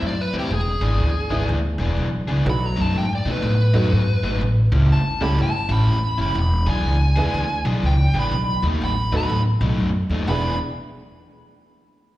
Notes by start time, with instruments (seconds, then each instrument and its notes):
Already playing: overdriven electric guitar A2 G3 C4 E4
0.02 upright bass F#2, lead electric guitar D5
0.21 lead electric guitar B4
0.33 upright bass D#2, overdriven electric guitar A2 G3 C4 E4
0.39 lead electric guitar G4
0.51 upright bass E1, lead electric guitar G#4
0.81 upright bass G#1, overdriven electric guitar E3 B3 D4 G#4
0.99 upright bass D2
1.30 upright bass G#1, honky-tonk piano E3 G#3 B3 D4 E4, overdriven electric guitar E3 B3 D4 G#4
1.49 upright bass D2
1.78 upright bass E1, overdriven electric guitar E3 B3 D4 G#4
1.97 upright bass B1
2.28 upright bass C#2, overdriven electric guitar E3 B3 D4 G#4
2.45 upright bass B1, honky-tonk piano F#3 A3 B3 D#4 F#4
2.50 lead electric guitar B5
2.66 lead electric guitar A#5
2.77 upright bass F#2, overdriven electric guitar B2 F#3 A3 D#4
2.81 lead electric guitar A5
2.96 upright bass G#2, lead electric guitar G5
3.15 lead electric guitar D5
3.25 upright bass B2, overdriven electric guitar B2 F#3 A3 D#4
3.31 lead electric guitar B4
3.42 upright bass A2
3.46 lead electric guitar B4
3.74 upright bass F#2, overdriven electric guitar B2 F#3 A3 D#4, honky-tonk piano F#3 A3 B3 D#4 F#4
3.93 upright bass G#2
4.23 upright bass G#1, overdriven electric guitar B2 F#3 A3 D#4
4.41 upright bass A1
4.72 upright bass C#2, overdriven electric guitar A2 G3 C#4 E4
4.89 upright bass G1, lead electric guitar A5
5.21 upright bass C#2, overdriven electric guitar A2 G3 C#4 E4, honky-tonk piano G3 A3 C#4 E4 G4, lead electric guitar B5
5.38 upright bass G1
5.42 lead electric guitar A5
5.69 upright bass A1, overdriven electric guitar A2 G3 C#4 E4, lead electric guitar B5
5.87 upright bass E2
6.18 upright bass F#1, overdriven electric guitar A2 G3 C#4 E4
6.22 lead electric guitar B5
6.35 upright bass E1
6.39 lead electric guitar B5
6.67 upright bass B1, overdriven electric guitar E3 B3 D4 G#4, lead electric guitar G#5
6.85 upright bass C#2
7.16 upright bass E2, overdriven electric guitar E3 B3 D4 G#4, honky-tonk piano G#3 B3 D4 E4 G#4
7.34 upright bass D2
7.65 upright bass B1, overdriven electric guitar E3 B3 D4 G#4
7.83 upright bass C#2, lead electric guitar G5
8.14 upright bass A1, overdriven electric guitar E3 B3 D4 G#4
8.19 lead electric guitar B5
8.31 upright bass B1
8.62 upright bass D#2, overdriven electric guitar B2 F#3 A3 D#4
8.81 upright bass A1, lead electric guitar B5
9.12 upright bass D#2, overdriven electric guitar B2 F#3 A3 D#4, honky-tonk piano A3 B3 D#4 F#4 A4
9.17 lead electric guitar B5
9.30 upright bass A1
9.61 upright bass B1, overdriven electric guitar B2 F#3 A3 D#4
9.78 upright bass F#2
10.09 upright bass D#2, overdriven electric guitar B2 F#3 A3 D#4
10.28 upright bass E1, overdriven electric guitar E3 B3 D4 G#4, honky-tonk piano G#3 B3 D4 E4 G#4, lead electric guitar B5